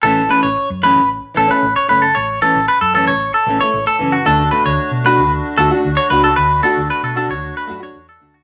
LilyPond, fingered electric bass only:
\new Staff \with { instrumentName = "Fingered electric bass" } { \clef bass \time 4/4 \key a \major \tempo 4 = 114 a,,8 r16 a,,16 r16 fis,8 a,,8 r16 a,,16 r16 a,,16 r16 fis,,8 | a,,8 r16 a,,16 r16 fis,8 a,,8 r16 a,,16 r16 a,,16 r16 fis,,8 | d,8 r16 d,16 r16 b,8 d,8 r16 d,16 r16 d,16 r16 cis,8 | d,8 r16 d,16 r16 b,8 d,8 r16 fis,8 e,8 d,8 | }